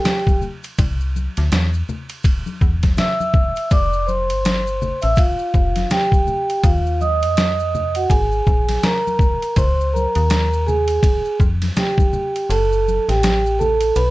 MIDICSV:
0, 0, Header, 1, 4, 480
1, 0, Start_track
1, 0, Tempo, 731707
1, 515, Time_signature, 4, 2, 24, 8
1, 9253, End_track
2, 0, Start_track
2, 0, Title_t, "Vibraphone"
2, 0, Program_c, 0, 11
2, 0, Note_on_c, 0, 67, 66
2, 0, Note_on_c, 0, 79, 56
2, 252, Note_off_c, 0, 67, 0
2, 256, Note_off_c, 0, 79, 0
2, 1953, Note_on_c, 0, 76, 76
2, 1961, Note_on_c, 0, 88, 63
2, 2408, Note_off_c, 0, 76, 0
2, 2412, Note_off_c, 0, 88, 0
2, 2433, Note_on_c, 0, 74, 90
2, 2440, Note_on_c, 0, 86, 68
2, 2658, Note_off_c, 0, 74, 0
2, 2661, Note_off_c, 0, 86, 0
2, 2668, Note_on_c, 0, 72, 80
2, 2674, Note_on_c, 0, 84, 61
2, 3270, Note_off_c, 0, 72, 0
2, 3273, Note_off_c, 0, 84, 0
2, 3291, Note_on_c, 0, 76, 86
2, 3298, Note_on_c, 0, 88, 62
2, 3387, Note_off_c, 0, 88, 0
2, 3392, Note_on_c, 0, 77, 98
2, 3394, Note_off_c, 0, 76, 0
2, 3399, Note_on_c, 0, 65, 73
2, 3847, Note_off_c, 0, 77, 0
2, 3851, Note_off_c, 0, 65, 0
2, 3877, Note_on_c, 0, 79, 89
2, 3882, Note_on_c, 0, 67, 74
2, 4332, Note_off_c, 0, 67, 0
2, 4357, Note_on_c, 0, 77, 96
2, 4359, Note_on_c, 0, 65, 79
2, 4370, Note_off_c, 0, 79, 0
2, 4579, Note_off_c, 0, 77, 0
2, 4581, Note_off_c, 0, 65, 0
2, 4597, Note_on_c, 0, 75, 89
2, 4602, Note_on_c, 0, 87, 74
2, 5197, Note_off_c, 0, 87, 0
2, 5221, Note_on_c, 0, 78, 90
2, 5223, Note_on_c, 0, 66, 69
2, 5240, Note_off_c, 0, 75, 0
2, 5310, Note_off_c, 0, 66, 0
2, 5310, Note_on_c, 0, 80, 99
2, 5313, Note_on_c, 0, 68, 83
2, 5318, Note_off_c, 0, 78, 0
2, 5768, Note_off_c, 0, 68, 0
2, 5794, Note_on_c, 0, 70, 92
2, 5795, Note_on_c, 0, 82, 68
2, 5807, Note_off_c, 0, 80, 0
2, 6249, Note_off_c, 0, 82, 0
2, 6277, Note_on_c, 0, 72, 94
2, 6277, Note_on_c, 0, 84, 71
2, 6289, Note_off_c, 0, 70, 0
2, 6466, Note_off_c, 0, 72, 0
2, 6466, Note_off_c, 0, 84, 0
2, 6474, Note_on_c, 0, 72, 61
2, 6513, Note_off_c, 0, 72, 0
2, 6516, Note_on_c, 0, 70, 86
2, 6517, Note_on_c, 0, 82, 65
2, 6969, Note_off_c, 0, 70, 0
2, 6970, Note_off_c, 0, 82, 0
2, 6997, Note_on_c, 0, 68, 86
2, 6999, Note_on_c, 0, 80, 64
2, 7450, Note_off_c, 0, 68, 0
2, 7451, Note_off_c, 0, 80, 0
2, 7716, Note_on_c, 0, 67, 73
2, 7722, Note_on_c, 0, 79, 58
2, 8169, Note_off_c, 0, 67, 0
2, 8173, Note_off_c, 0, 79, 0
2, 8199, Note_on_c, 0, 69, 87
2, 8204, Note_on_c, 0, 81, 71
2, 8556, Note_off_c, 0, 69, 0
2, 8558, Note_off_c, 0, 81, 0
2, 8584, Note_on_c, 0, 67, 83
2, 8588, Note_on_c, 0, 79, 64
2, 8894, Note_off_c, 0, 67, 0
2, 8896, Note_off_c, 0, 79, 0
2, 8916, Note_on_c, 0, 69, 103
2, 8917, Note_on_c, 0, 81, 76
2, 9139, Note_off_c, 0, 69, 0
2, 9139, Note_off_c, 0, 81, 0
2, 9155, Note_on_c, 0, 71, 99
2, 9157, Note_on_c, 0, 83, 73
2, 9253, Note_off_c, 0, 71, 0
2, 9253, Note_off_c, 0, 83, 0
2, 9253, End_track
3, 0, Start_track
3, 0, Title_t, "FM bass"
3, 0, Program_c, 1, 39
3, 516, Note_on_c, 1, 36, 82
3, 844, Note_off_c, 1, 36, 0
3, 905, Note_on_c, 1, 38, 95
3, 984, Note_off_c, 1, 38, 0
3, 998, Note_on_c, 1, 40, 95
3, 1201, Note_off_c, 1, 40, 0
3, 1716, Note_on_c, 1, 40, 78
3, 1920, Note_off_c, 1, 40, 0
3, 2438, Note_on_c, 1, 29, 93
3, 2823, Note_on_c, 1, 31, 96
3, 2833, Note_off_c, 1, 29, 0
3, 3231, Note_off_c, 1, 31, 0
3, 3304, Note_on_c, 1, 33, 85
3, 3383, Note_off_c, 1, 33, 0
3, 3636, Note_on_c, 1, 29, 92
3, 3840, Note_off_c, 1, 29, 0
3, 4355, Note_on_c, 1, 39, 94
3, 4743, Note_on_c, 1, 41, 90
3, 4753, Note_off_c, 1, 39, 0
3, 5291, Note_off_c, 1, 41, 0
3, 5315, Note_on_c, 1, 32, 98
3, 5520, Note_off_c, 1, 32, 0
3, 5555, Note_on_c, 1, 34, 82
3, 5760, Note_off_c, 1, 34, 0
3, 6277, Note_on_c, 1, 37, 88
3, 6604, Note_off_c, 1, 37, 0
3, 6665, Note_on_c, 1, 39, 102
3, 7211, Note_off_c, 1, 39, 0
3, 7480, Note_on_c, 1, 41, 88
3, 7682, Note_off_c, 1, 41, 0
3, 8197, Note_on_c, 1, 30, 108
3, 8525, Note_off_c, 1, 30, 0
3, 8585, Note_on_c, 1, 33, 94
3, 9131, Note_off_c, 1, 33, 0
3, 9158, Note_on_c, 1, 35, 93
3, 9253, Note_off_c, 1, 35, 0
3, 9253, End_track
4, 0, Start_track
4, 0, Title_t, "Drums"
4, 30, Note_on_c, 9, 64, 57
4, 30, Note_on_c, 9, 82, 53
4, 34, Note_on_c, 9, 44, 47
4, 34, Note_on_c, 9, 51, 61
4, 35, Note_on_c, 9, 38, 105
4, 96, Note_off_c, 9, 64, 0
4, 96, Note_off_c, 9, 82, 0
4, 99, Note_off_c, 9, 44, 0
4, 99, Note_off_c, 9, 51, 0
4, 101, Note_off_c, 9, 38, 0
4, 175, Note_on_c, 9, 36, 81
4, 183, Note_on_c, 9, 63, 57
4, 183, Note_on_c, 9, 82, 42
4, 241, Note_off_c, 9, 36, 0
4, 249, Note_off_c, 9, 63, 0
4, 249, Note_off_c, 9, 82, 0
4, 274, Note_on_c, 9, 64, 48
4, 274, Note_on_c, 9, 82, 37
4, 339, Note_off_c, 9, 64, 0
4, 339, Note_off_c, 9, 82, 0
4, 417, Note_on_c, 9, 82, 45
4, 422, Note_on_c, 9, 51, 51
4, 482, Note_off_c, 9, 82, 0
4, 488, Note_off_c, 9, 51, 0
4, 512, Note_on_c, 9, 82, 70
4, 515, Note_on_c, 9, 36, 92
4, 515, Note_on_c, 9, 51, 58
4, 578, Note_off_c, 9, 82, 0
4, 581, Note_off_c, 9, 36, 0
4, 581, Note_off_c, 9, 51, 0
4, 659, Note_on_c, 9, 82, 41
4, 724, Note_off_c, 9, 82, 0
4, 761, Note_on_c, 9, 63, 48
4, 761, Note_on_c, 9, 82, 52
4, 826, Note_off_c, 9, 63, 0
4, 826, Note_off_c, 9, 82, 0
4, 898, Note_on_c, 9, 82, 40
4, 900, Note_on_c, 9, 51, 54
4, 902, Note_on_c, 9, 38, 30
4, 963, Note_off_c, 9, 82, 0
4, 965, Note_off_c, 9, 51, 0
4, 967, Note_off_c, 9, 38, 0
4, 996, Note_on_c, 9, 44, 50
4, 996, Note_on_c, 9, 51, 71
4, 1001, Note_on_c, 9, 38, 118
4, 1001, Note_on_c, 9, 63, 45
4, 1001, Note_on_c, 9, 82, 64
4, 1062, Note_off_c, 9, 44, 0
4, 1062, Note_off_c, 9, 51, 0
4, 1066, Note_off_c, 9, 63, 0
4, 1066, Note_off_c, 9, 82, 0
4, 1067, Note_off_c, 9, 38, 0
4, 1140, Note_on_c, 9, 82, 47
4, 1205, Note_off_c, 9, 82, 0
4, 1239, Note_on_c, 9, 64, 64
4, 1239, Note_on_c, 9, 82, 46
4, 1305, Note_off_c, 9, 64, 0
4, 1305, Note_off_c, 9, 82, 0
4, 1371, Note_on_c, 9, 82, 46
4, 1375, Note_on_c, 9, 51, 54
4, 1437, Note_off_c, 9, 82, 0
4, 1441, Note_off_c, 9, 51, 0
4, 1466, Note_on_c, 9, 82, 57
4, 1472, Note_on_c, 9, 36, 83
4, 1475, Note_on_c, 9, 51, 62
4, 1532, Note_off_c, 9, 82, 0
4, 1537, Note_off_c, 9, 36, 0
4, 1541, Note_off_c, 9, 51, 0
4, 1616, Note_on_c, 9, 63, 54
4, 1616, Note_on_c, 9, 82, 42
4, 1681, Note_off_c, 9, 63, 0
4, 1681, Note_off_c, 9, 82, 0
4, 1714, Note_on_c, 9, 36, 82
4, 1714, Note_on_c, 9, 82, 42
4, 1779, Note_off_c, 9, 36, 0
4, 1780, Note_off_c, 9, 82, 0
4, 1856, Note_on_c, 9, 51, 62
4, 1858, Note_on_c, 9, 38, 37
4, 1860, Note_on_c, 9, 36, 88
4, 1860, Note_on_c, 9, 63, 53
4, 1860, Note_on_c, 9, 82, 41
4, 1921, Note_off_c, 9, 51, 0
4, 1924, Note_off_c, 9, 38, 0
4, 1925, Note_off_c, 9, 36, 0
4, 1926, Note_off_c, 9, 63, 0
4, 1926, Note_off_c, 9, 82, 0
4, 1950, Note_on_c, 9, 64, 57
4, 1950, Note_on_c, 9, 82, 53
4, 1956, Note_on_c, 9, 44, 48
4, 1956, Note_on_c, 9, 51, 65
4, 1957, Note_on_c, 9, 38, 106
4, 2015, Note_off_c, 9, 64, 0
4, 2015, Note_off_c, 9, 82, 0
4, 2021, Note_off_c, 9, 44, 0
4, 2021, Note_off_c, 9, 51, 0
4, 2023, Note_off_c, 9, 38, 0
4, 2102, Note_on_c, 9, 63, 60
4, 2102, Note_on_c, 9, 82, 43
4, 2168, Note_off_c, 9, 63, 0
4, 2168, Note_off_c, 9, 82, 0
4, 2189, Note_on_c, 9, 36, 97
4, 2189, Note_on_c, 9, 64, 50
4, 2189, Note_on_c, 9, 82, 36
4, 2254, Note_off_c, 9, 64, 0
4, 2254, Note_off_c, 9, 82, 0
4, 2255, Note_off_c, 9, 36, 0
4, 2335, Note_on_c, 9, 82, 45
4, 2342, Note_on_c, 9, 51, 49
4, 2401, Note_off_c, 9, 82, 0
4, 2408, Note_off_c, 9, 51, 0
4, 2432, Note_on_c, 9, 82, 67
4, 2435, Note_on_c, 9, 36, 91
4, 2436, Note_on_c, 9, 51, 56
4, 2497, Note_off_c, 9, 82, 0
4, 2500, Note_off_c, 9, 36, 0
4, 2502, Note_off_c, 9, 51, 0
4, 2579, Note_on_c, 9, 82, 41
4, 2645, Note_off_c, 9, 82, 0
4, 2679, Note_on_c, 9, 63, 47
4, 2679, Note_on_c, 9, 82, 52
4, 2745, Note_off_c, 9, 63, 0
4, 2745, Note_off_c, 9, 82, 0
4, 2820, Note_on_c, 9, 51, 57
4, 2820, Note_on_c, 9, 82, 42
4, 2886, Note_off_c, 9, 51, 0
4, 2886, Note_off_c, 9, 82, 0
4, 2921, Note_on_c, 9, 44, 50
4, 2921, Note_on_c, 9, 51, 71
4, 2921, Note_on_c, 9, 63, 44
4, 2921, Note_on_c, 9, 82, 63
4, 2925, Note_on_c, 9, 38, 105
4, 2986, Note_off_c, 9, 44, 0
4, 2986, Note_off_c, 9, 51, 0
4, 2986, Note_off_c, 9, 63, 0
4, 2986, Note_off_c, 9, 82, 0
4, 2991, Note_off_c, 9, 38, 0
4, 3063, Note_on_c, 9, 82, 45
4, 3129, Note_off_c, 9, 82, 0
4, 3161, Note_on_c, 9, 64, 64
4, 3161, Note_on_c, 9, 82, 42
4, 3227, Note_off_c, 9, 64, 0
4, 3227, Note_off_c, 9, 82, 0
4, 3291, Note_on_c, 9, 82, 50
4, 3296, Note_on_c, 9, 51, 55
4, 3357, Note_off_c, 9, 82, 0
4, 3362, Note_off_c, 9, 51, 0
4, 3384, Note_on_c, 9, 82, 56
4, 3392, Note_on_c, 9, 36, 92
4, 3398, Note_on_c, 9, 51, 58
4, 3449, Note_off_c, 9, 82, 0
4, 3458, Note_off_c, 9, 36, 0
4, 3464, Note_off_c, 9, 51, 0
4, 3536, Note_on_c, 9, 82, 43
4, 3601, Note_off_c, 9, 82, 0
4, 3633, Note_on_c, 9, 82, 45
4, 3634, Note_on_c, 9, 36, 79
4, 3699, Note_off_c, 9, 82, 0
4, 3700, Note_off_c, 9, 36, 0
4, 3776, Note_on_c, 9, 51, 57
4, 3779, Note_on_c, 9, 38, 35
4, 3785, Note_on_c, 9, 63, 51
4, 3785, Note_on_c, 9, 82, 37
4, 3842, Note_off_c, 9, 51, 0
4, 3845, Note_off_c, 9, 38, 0
4, 3850, Note_off_c, 9, 63, 0
4, 3850, Note_off_c, 9, 82, 0
4, 3872, Note_on_c, 9, 64, 52
4, 3872, Note_on_c, 9, 82, 59
4, 3876, Note_on_c, 9, 44, 47
4, 3876, Note_on_c, 9, 51, 65
4, 3878, Note_on_c, 9, 38, 110
4, 3938, Note_off_c, 9, 64, 0
4, 3938, Note_off_c, 9, 82, 0
4, 3942, Note_off_c, 9, 44, 0
4, 3942, Note_off_c, 9, 51, 0
4, 3943, Note_off_c, 9, 38, 0
4, 4014, Note_on_c, 9, 36, 80
4, 4024, Note_on_c, 9, 63, 55
4, 4024, Note_on_c, 9, 82, 44
4, 4079, Note_off_c, 9, 36, 0
4, 4090, Note_off_c, 9, 63, 0
4, 4090, Note_off_c, 9, 82, 0
4, 4114, Note_on_c, 9, 64, 56
4, 4114, Note_on_c, 9, 82, 41
4, 4179, Note_off_c, 9, 64, 0
4, 4179, Note_off_c, 9, 82, 0
4, 4262, Note_on_c, 9, 51, 48
4, 4262, Note_on_c, 9, 82, 45
4, 4328, Note_off_c, 9, 51, 0
4, 4328, Note_off_c, 9, 82, 0
4, 4353, Note_on_c, 9, 36, 105
4, 4353, Note_on_c, 9, 51, 60
4, 4358, Note_on_c, 9, 82, 72
4, 4418, Note_off_c, 9, 51, 0
4, 4419, Note_off_c, 9, 36, 0
4, 4424, Note_off_c, 9, 82, 0
4, 4502, Note_on_c, 9, 82, 39
4, 4567, Note_off_c, 9, 82, 0
4, 4600, Note_on_c, 9, 63, 50
4, 4600, Note_on_c, 9, 82, 50
4, 4665, Note_off_c, 9, 63, 0
4, 4665, Note_off_c, 9, 82, 0
4, 4736, Note_on_c, 9, 82, 37
4, 4741, Note_on_c, 9, 51, 58
4, 4802, Note_off_c, 9, 82, 0
4, 4807, Note_off_c, 9, 51, 0
4, 4836, Note_on_c, 9, 44, 53
4, 4836, Note_on_c, 9, 51, 73
4, 4841, Note_on_c, 9, 38, 113
4, 4846, Note_on_c, 9, 63, 46
4, 4846, Note_on_c, 9, 82, 63
4, 4901, Note_off_c, 9, 44, 0
4, 4901, Note_off_c, 9, 51, 0
4, 4906, Note_off_c, 9, 38, 0
4, 4912, Note_off_c, 9, 63, 0
4, 4912, Note_off_c, 9, 82, 0
4, 4983, Note_on_c, 9, 82, 46
4, 5049, Note_off_c, 9, 82, 0
4, 5082, Note_on_c, 9, 64, 65
4, 5082, Note_on_c, 9, 82, 44
4, 5147, Note_off_c, 9, 64, 0
4, 5147, Note_off_c, 9, 82, 0
4, 5214, Note_on_c, 9, 51, 61
4, 5218, Note_on_c, 9, 82, 48
4, 5280, Note_off_c, 9, 51, 0
4, 5284, Note_off_c, 9, 82, 0
4, 5310, Note_on_c, 9, 82, 53
4, 5312, Note_on_c, 9, 36, 82
4, 5319, Note_on_c, 9, 51, 69
4, 5376, Note_off_c, 9, 82, 0
4, 5378, Note_off_c, 9, 36, 0
4, 5385, Note_off_c, 9, 51, 0
4, 5458, Note_on_c, 9, 82, 40
4, 5524, Note_off_c, 9, 82, 0
4, 5555, Note_on_c, 9, 36, 79
4, 5555, Note_on_c, 9, 82, 40
4, 5620, Note_off_c, 9, 36, 0
4, 5621, Note_off_c, 9, 82, 0
4, 5698, Note_on_c, 9, 51, 64
4, 5700, Note_on_c, 9, 38, 38
4, 5703, Note_on_c, 9, 63, 53
4, 5703, Note_on_c, 9, 82, 42
4, 5763, Note_off_c, 9, 51, 0
4, 5766, Note_off_c, 9, 38, 0
4, 5769, Note_off_c, 9, 63, 0
4, 5769, Note_off_c, 9, 82, 0
4, 5794, Note_on_c, 9, 64, 57
4, 5794, Note_on_c, 9, 82, 56
4, 5795, Note_on_c, 9, 44, 41
4, 5795, Note_on_c, 9, 51, 60
4, 5796, Note_on_c, 9, 38, 109
4, 5859, Note_off_c, 9, 64, 0
4, 5859, Note_off_c, 9, 82, 0
4, 5860, Note_off_c, 9, 44, 0
4, 5860, Note_off_c, 9, 51, 0
4, 5862, Note_off_c, 9, 38, 0
4, 5951, Note_on_c, 9, 63, 59
4, 5951, Note_on_c, 9, 82, 44
4, 6017, Note_off_c, 9, 63, 0
4, 6017, Note_off_c, 9, 82, 0
4, 6029, Note_on_c, 9, 36, 95
4, 6041, Note_on_c, 9, 64, 50
4, 6041, Note_on_c, 9, 82, 38
4, 6095, Note_off_c, 9, 36, 0
4, 6107, Note_off_c, 9, 64, 0
4, 6107, Note_off_c, 9, 82, 0
4, 6182, Note_on_c, 9, 51, 47
4, 6187, Note_on_c, 9, 82, 44
4, 6248, Note_off_c, 9, 51, 0
4, 6252, Note_off_c, 9, 82, 0
4, 6273, Note_on_c, 9, 51, 54
4, 6275, Note_on_c, 9, 36, 104
4, 6284, Note_on_c, 9, 82, 73
4, 6338, Note_off_c, 9, 51, 0
4, 6340, Note_off_c, 9, 36, 0
4, 6349, Note_off_c, 9, 82, 0
4, 6434, Note_on_c, 9, 82, 43
4, 6499, Note_off_c, 9, 82, 0
4, 6534, Note_on_c, 9, 63, 50
4, 6534, Note_on_c, 9, 82, 51
4, 6600, Note_off_c, 9, 63, 0
4, 6600, Note_off_c, 9, 82, 0
4, 6660, Note_on_c, 9, 51, 56
4, 6667, Note_on_c, 9, 82, 42
4, 6726, Note_off_c, 9, 51, 0
4, 6733, Note_off_c, 9, 82, 0
4, 6757, Note_on_c, 9, 44, 53
4, 6757, Note_on_c, 9, 51, 76
4, 6762, Note_on_c, 9, 38, 118
4, 6773, Note_on_c, 9, 63, 46
4, 6773, Note_on_c, 9, 82, 64
4, 6823, Note_off_c, 9, 44, 0
4, 6823, Note_off_c, 9, 51, 0
4, 6828, Note_off_c, 9, 38, 0
4, 6839, Note_off_c, 9, 63, 0
4, 6839, Note_off_c, 9, 82, 0
4, 6909, Note_on_c, 9, 82, 47
4, 6975, Note_off_c, 9, 82, 0
4, 7007, Note_on_c, 9, 64, 70
4, 7007, Note_on_c, 9, 82, 48
4, 7073, Note_off_c, 9, 64, 0
4, 7073, Note_off_c, 9, 82, 0
4, 7135, Note_on_c, 9, 51, 58
4, 7145, Note_on_c, 9, 82, 47
4, 7201, Note_off_c, 9, 51, 0
4, 7210, Note_off_c, 9, 82, 0
4, 7234, Note_on_c, 9, 36, 89
4, 7235, Note_on_c, 9, 82, 52
4, 7240, Note_on_c, 9, 51, 71
4, 7300, Note_off_c, 9, 36, 0
4, 7300, Note_off_c, 9, 82, 0
4, 7306, Note_off_c, 9, 51, 0
4, 7381, Note_on_c, 9, 82, 39
4, 7446, Note_off_c, 9, 82, 0
4, 7477, Note_on_c, 9, 36, 81
4, 7481, Note_on_c, 9, 82, 47
4, 7542, Note_off_c, 9, 36, 0
4, 7547, Note_off_c, 9, 82, 0
4, 7621, Note_on_c, 9, 51, 64
4, 7624, Note_on_c, 9, 38, 34
4, 7628, Note_on_c, 9, 63, 53
4, 7628, Note_on_c, 9, 82, 38
4, 7687, Note_off_c, 9, 51, 0
4, 7689, Note_off_c, 9, 38, 0
4, 7694, Note_off_c, 9, 63, 0
4, 7694, Note_off_c, 9, 82, 0
4, 7718, Note_on_c, 9, 64, 58
4, 7718, Note_on_c, 9, 82, 62
4, 7719, Note_on_c, 9, 44, 46
4, 7719, Note_on_c, 9, 51, 67
4, 7721, Note_on_c, 9, 38, 105
4, 7783, Note_off_c, 9, 64, 0
4, 7783, Note_off_c, 9, 82, 0
4, 7785, Note_off_c, 9, 44, 0
4, 7785, Note_off_c, 9, 51, 0
4, 7786, Note_off_c, 9, 38, 0
4, 7857, Note_on_c, 9, 36, 88
4, 7870, Note_on_c, 9, 63, 63
4, 7870, Note_on_c, 9, 82, 43
4, 7923, Note_off_c, 9, 36, 0
4, 7935, Note_off_c, 9, 63, 0
4, 7935, Note_off_c, 9, 82, 0
4, 7959, Note_on_c, 9, 64, 59
4, 7959, Note_on_c, 9, 82, 41
4, 8024, Note_off_c, 9, 64, 0
4, 8024, Note_off_c, 9, 82, 0
4, 8106, Note_on_c, 9, 82, 41
4, 8107, Note_on_c, 9, 51, 47
4, 8172, Note_off_c, 9, 51, 0
4, 8172, Note_off_c, 9, 82, 0
4, 8203, Note_on_c, 9, 51, 61
4, 8203, Note_on_c, 9, 82, 68
4, 8268, Note_off_c, 9, 51, 0
4, 8268, Note_off_c, 9, 82, 0
4, 8347, Note_on_c, 9, 82, 44
4, 8413, Note_off_c, 9, 82, 0
4, 8451, Note_on_c, 9, 63, 46
4, 8451, Note_on_c, 9, 82, 54
4, 8516, Note_off_c, 9, 63, 0
4, 8516, Note_off_c, 9, 82, 0
4, 8587, Note_on_c, 9, 51, 53
4, 8588, Note_on_c, 9, 82, 42
4, 8590, Note_on_c, 9, 38, 34
4, 8653, Note_off_c, 9, 51, 0
4, 8653, Note_off_c, 9, 82, 0
4, 8655, Note_off_c, 9, 38, 0
4, 8681, Note_on_c, 9, 44, 54
4, 8681, Note_on_c, 9, 51, 73
4, 8686, Note_on_c, 9, 38, 113
4, 8690, Note_on_c, 9, 63, 44
4, 8690, Note_on_c, 9, 82, 63
4, 8746, Note_off_c, 9, 44, 0
4, 8746, Note_off_c, 9, 51, 0
4, 8751, Note_off_c, 9, 38, 0
4, 8756, Note_off_c, 9, 63, 0
4, 8756, Note_off_c, 9, 82, 0
4, 8830, Note_on_c, 9, 82, 45
4, 8895, Note_off_c, 9, 82, 0
4, 8928, Note_on_c, 9, 64, 62
4, 8928, Note_on_c, 9, 82, 47
4, 8993, Note_off_c, 9, 64, 0
4, 8993, Note_off_c, 9, 82, 0
4, 9056, Note_on_c, 9, 51, 60
4, 9060, Note_on_c, 9, 82, 50
4, 9122, Note_off_c, 9, 51, 0
4, 9126, Note_off_c, 9, 82, 0
4, 9155, Note_on_c, 9, 82, 57
4, 9159, Note_on_c, 9, 51, 66
4, 9221, Note_off_c, 9, 82, 0
4, 9224, Note_off_c, 9, 51, 0
4, 9253, End_track
0, 0, End_of_file